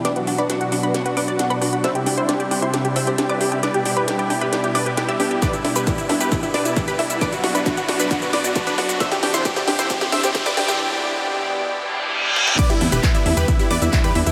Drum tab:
CC |----------------|----------------|----------------|----------------|
HH |xxoxxxoxxxoxxxox|xxoxxxoxxxoxxxox|xxoxxxoxxxoxxxox|xxoxxxoxxxoxxxox|
SH |----------------|----------------|----------------|xx-xxx-xxx-xxx-x|
CP |----------------|----------------|----------------|----------------|
SD |o---o---o---o---|o---o---o---o---|o---o---o---o---|o-o-o-o-o-o-o-o-|
T2 |----------------|----------------|----------------|--o---o---------|
BD |----------------|----------------|----------------|o---o---o---o---|

CC |----------------|----------------|----------------|x---------------|
HH |xxo-xxoxxxoxxxox|xxo-xxoxxxoxxxox|----------------|xxoxxxoxxxo-xxox|
SH |xx-xxx-xxx-xxx-x|xx-xxx-xxx-xxx-x|----------------|xx-xxx-xxx-xxx-x|
CP |----------------|----------------|----------------|----x-------x---|
SD |o-o-o-o-o-o-o-o-|oooooooooooooooo|--------------oo|----------------|
T2 |--o---o----o----|--o---o---------|----------------|--o---o---------|
BD |o---o---o---o---|o---o---o---o---|----------------|o---o---o---o---|